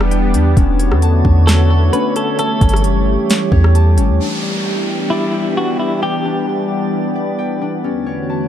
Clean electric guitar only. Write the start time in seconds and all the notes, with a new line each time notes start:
1.47 A4
1.93 B4
2.16 A4
2.39 A4
5.10 E4
5.57 F#4
5.79 E4
6.03 G4